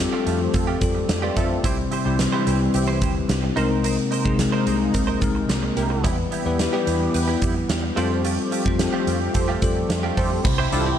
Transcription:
Already playing: analog synth pad F3 A3 C4 G4, tine electric piano G3 C4 F4 A4
0.12 clean electric guitar A3 F4 G4
0.26 fingered electric bass F2, clean electric guitar A3 F4 G4, closed hi-hat
0.40 muted clean electric guitar stroke
0.54 fingered electric bass F2, analog polysynth C4 F4 A4, muted clean electric guitar stroke, kick, closed hi-hat
0.67 clean electric guitar A3 F4 G4
0.81 fingered electric bass F2, tine electric piano G3 C4 F4 A4, muted clean electric guitar stroke, kick, closed hi-hat
0.95 muted clean electric guitar stroke
1.09 fingered electric bass F2, muted clean electric guitar stroke, snare, closed hi-hat
1.22 clean electric guitar A3 F4 G4, tine electric piano B4 D5
1.36 fingered electric bass F2, clean electric guitar A3 F4 G4, analog polysynth C4 F4 A4, tine electric piano C5 E5, kick, closed hi-hat
1.50 tine electric piano A4 C5, muted clean electric guitar stroke
1.64 fingered electric bass C2, tine electric piano C3 G3 C4 E4 C5, analog synth pad E3 G3 C4, clean electric guitar E4 G4 C5, kick, closed hi-hat
1.78 muted clean electric guitar stroke
1.91 clean electric guitar E4 G4 C5, closed hi-hat
2.05 fingered electric bass C2, tine electric piano G3 C4 E4 G4, clean electric guitar E4 G4 C5
2.19 muted clean electric guitar stroke, snare, closed hi-hat
2.32 tine electric piano G3 C4 E4 B4, clean electric guitar E4 G4 C5
2.46 fingered electric bass C2, clean electric guitar E4 G4 C5, closed hi-hat
2.60 muted clean electric guitar stroke
2.74 fingered electric bass C2, analog polysynth C4 E4 G4, muted clean electric guitar stroke, closed hi-hat
2.88 clean electric guitar E4 G4 C5
3.01 fingered electric bass D2, clean electric guitar E4 G4 C5, kick, closed hi-hat
3.15 muted clean electric guitar stroke
3.29 fingered electric bass C2, muted clean electric guitar stroke, snare, closed hi-hat
3.43 muted clean electric guitar stroke
3.56 fingered electric bass C2, tine electric piano C3 G#3 C4 D#4 A#4, analog synth pad C3 G#3 A#3 D#4, analog polysynth C4 D#4 A#4, clean electric guitar D#4 A#4 C5, closed hi-hat
3.70 clean electric guitar D#4 A#4 C5
3.84 clean electric guitar D#4 A#4 C5, closed hi-hat
4.11 clean electric guitar D#4 A#4 C5, closed hi-hat
4.25 fingered electric bass C2, tine electric piano G#3 C4 D#4 G#4, clean electric guitar D#4 A#4 C5, kick
4.39 muted clean electric guitar stroke, snare, closed hi-hat
4.52 clean electric guitar D#4 A#4 C5
4.66 fingered electric bass C2, clean electric guitar D#4 A#4 C5, closed hi-hat
4.80 muted clean electric guitar stroke
4.94 fingered electric bass C2, analog polysynth C4 D#4 A#4, muted clean electric guitar stroke, kick, closed hi-hat
5.07 clean electric guitar D#4 A#4 C5
5.21 fingered electric bass C2, tine electric piano G#3 C4 D#4 A#4, muted clean electric guitar stroke, kick, closed hi-hat
5.35 muted clean electric guitar stroke
5.49 fingered electric bass C2, muted clean electric guitar stroke, snare, closed hi-hat
5.63 muted clean electric guitar stroke
5.77 fingered electric bass C2, analog polysynth E4 G4 A#4, closed hi-hat
5.90 muted clean electric guitar stroke
6.04 fingered electric bass E2, analog synth pad E3 G3 B3 G4, tine electric piano E3 G3 B3 E4 B4, clean electric guitar B3 E4 G4, kick, closed hi-hat
6.18 muted clean electric guitar stroke
6.31 clean electric guitar B3 E4 G4, closed hi-hat
6.45 fingered electric bass E2, tine electric piano G3 B3 E4 B4, clean electric guitar B3 E4 G4
6.59 muted clean electric guitar stroke, snare, closed hi-hat
6.73 tine electric piano G3 B3 E4 B4, clean electric guitar B3 E4 G4
6.87 fingered electric bass E2, clean electric guitar B3 E4 G4, closed hi-hat
7.01 muted clean electric guitar stroke
7.14 fingered electric bass E2, analog polysynth E4 G4 B4, muted clean electric guitar stroke, closed hi-hat
7.28 clean electric guitar B3 E4 G4
7.42 fingered electric bass F2, clean electric guitar B3 E4 G4, kick, closed hi-hat
7.55 muted clean electric guitar stroke
7.69 fingered electric bass E2, muted clean electric guitar stroke, snare, closed hi-hat
7.83 muted clean electric guitar stroke
7.96 fingered electric bass F2, analog synth pad F3 A3 C4 G4, tine electric piano G3 C4 F4 A4, clean electric guitar A3 F4 G4, analog polysynth G4 A4 C5, closed hi-hat
8.10 clean electric guitar A3 F4 G4
8.24 clean electric guitar A3 F4 G4, closed hi-hat
8.38 muted clean electric guitar stroke
8.51 clean electric guitar A3 F4 G4, closed hi-hat
8.65 fingered electric bass F2, tine electric piano G3 C4 F4 C5, clean electric guitar A3 F4 G4, kick
8.79 muted clean electric guitar stroke, snare, closed hi-hat
8.93 clean electric guitar A3 F4 G4
9.07 fingered electric bass F2, clean electric guitar A3 F4 G4, closed hi-hat
9.20 muted clean electric guitar stroke
9.34 fingered electric bass F2, analog polysynth G4 A4 C5, muted clean electric guitar stroke, kick, closed hi-hat
9.48 clean electric guitar A3 F4 G4
9.61 fingered electric bass F2, tine electric piano G3 C4 F4 A4, kick, closed hi-hat
9.76 muted clean electric guitar stroke
9.89 fingered electric bass F2, muted clean electric guitar stroke, snare, closed hi-hat
10.03 clean electric guitar A3 F4 G4
10.17 fingered electric bass F2, clean electric guitar A3 F4 G4, analog polysynth G4 A4 C5, kick, open hi-hat
10.31 muted clean electric guitar stroke
10.44 fingered electric bass C2, tine electric piano C3 E4 G4 C5, analog synth pad E3 G3 C4 G4, muted clean electric guitar stroke, kick, crash
10.58 clean electric guitar E4 G4 C5
10.72 fingered electric bass C2, analog polysynth D4 F4 A4, tine electric piano E4 G4 C5, clean electric guitar E4 G4 C5, closed hi-hat
10.86 analog polysynth C4 E4 G4, muted clean electric guitar stroke

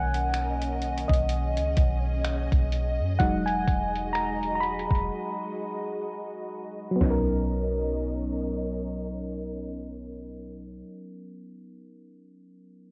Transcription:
Already playing: 808-style bass B1, fm electric piano D#3 A#3 C#4 F#5 G#5, string section C#4 A#4 D#5
0.14 closed hi-hat
0.34 finger snap, closed hi-hat
0.62 closed hi-hat
0.82 closed hi-hat
0.98 closed hi-hat
1.08 808-style bass B1, fm electric piano D#5, kick
1.13 closed hi-hat
1.29 string section G#4, closed hi-hat
1.57 808-style bass C#2, closed hi-hat
1.77 808-style bass B1, kick, closed hi-hat
2.25 finger snap, closed hi-hat
2.52 808-style bass B1, kick, closed hi-hat
2.72 closed hi-hat
3.00 808-style bass F#2
3.19 808-style bass E1, fm electric piano F#3 G#3 D#4 F#5, string section G#3 F#4, kick, closed hi-hat
3.46 fm electric piano G#5, closed hi-hat
3.68 808-style bass E1, kick, closed hi-hat
3.96 closed hi-hat
4.13 fm electric piano A#5, finger snap, closed hi-hat
4.43 closed hi-hat
4.55 fm electric piano A#5
4.60 fm electric piano B5, closed hi-hat
4.79 closed hi-hat
4.91 808-style bass E1, kick
4.95 closed hi-hat
6.91 fm electric piano F#3
6.96 fm electric piano B3
7.00 808-style bass B1, string section C#4 A#4 D#5, fm electric piano C#4, snare, floor tom, open hi-hat
7.06 fm electric piano D#4
7.10 fm electric piano A#4

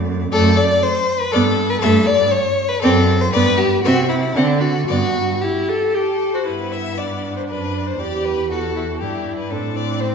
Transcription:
Already playing: cello F#2, viola A3, violin D5
0.31 cello F#2, viola A3, violin A4 D5
0.57 violin D5
0.83 violin C5
1.20 violin B4
1.32 cello G2, viola B3, violin A4 D5
1.70 violin B4
1.81 cello G2, viola A3, violin A4 E5
2.06 violin D5
2.31 violin C#5
2.69 violin B4
2.82 cello F#2, viola C4, violin A4 D5
3.21 violin C5
3.32 cello G2, viola B3, violin B4 D5
3.58 violin G4
3.83 cello C3, viola C4, violin F#4 E5
4.09 violin E4
4.35 cello D3, viola C4, violin D4 F#5
4.61 violin F#4
4.87 cello G2, viola B3, violin F#4 D5
5.42 viola E4, violin G4
5.69 viola A4
5.95 viola G4, violin A4
6.34 viola F#4, violin C5
6.47 cello G2, violin B3 B4, viola E4
6.72 violin E5
6.98 viola D4, violin D5
7.36 violin C5
7.49 cello F#2, violin D4 B4
7.87 violin C5
8.00 cello E2, viola G4, violin G4 D5
8.25 violin B4
8.50 violin F#4 A4, viola F#4
8.76 violin E4
9.01 cello G2, violin D4 G4, viola E4
9.38 violin B4
9.51 cello A2, violin C4 A4, viola D4
9.76 violin D5
10.00 viola C4, violin C5

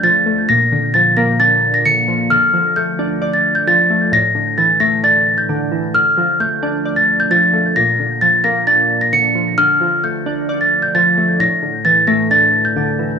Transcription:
Already playing: synth keys D3 F3 A3 D4 D5
0.03 synth keys F3, celesta A6
0.26 synth keys A3
0.49 synth keys A#2, celesta A#6
0.72 synth keys D3
0.94 synth keys F3, celesta A6
1.17 synth keys A#3, celesta A#6
1.40 synth keys D4, celesta A6
1.74 celesta A#6
1.85 synth keys D3, celesta C#7
2.08 synth keys F3
2.30 synth keys D3, celesta F6
2.53 synth keys F3
2.76 synth keys A3, celesta G6
2.99 synth keys D4
3.22 synth keys D5
3.34 celesta A6
3.55 celesta G6
3.67 synth keys F3, celesta A6
3.90 synth keys A3
4.12 synth keys A2, celesta A#6
4.35 synth keys D3
4.58 synth keys E3, celesta A6
4.80 synth keys A3, celesta A#6
5.03 synth keys D4, celesta A6
5.38 celesta G6
5.49 synth keys D3
5.72 synth keys E3
5.94 synth keys D3, celesta F6
6.18 synth keys F3
6.40 synth keys A3, celesta G6
6.63 synth keys D4
6.85 synth keys D5
6.96 celesta A6
7.20 celesta G6
7.31 synth keys F3, celesta A6
7.53 synth keys A3
7.76 synth keys A#2, celesta A#6
7.99 synth keys D3
8.21 synth keys F3, celesta A6
8.44 synth keys A#3, celesta A#6
8.67 synth keys D4, celesta A6
9.01 celesta A#6
9.13 synth keys D3, celesta C#7
9.35 synth keys F3
9.58 synth keys D3, celesta F6
9.81 synth keys F3
10.04 synth keys A3, celesta G6
10.26 synth keys D4
10.49 synth keys D5
10.61 celesta A6
10.82 celesta G6
10.95 synth keys F3, celesta A6
11.18 synth keys A3
11.40 synth keys A2, celesta A#6
11.62 synth keys D3
11.85 synth keys E3, celesta A6
12.07 synth keys A3, celesta A#6
12.31 synth keys D4, celesta A6
12.65 celesta G6
12.76 synth keys D3
12.99 synth keys E3

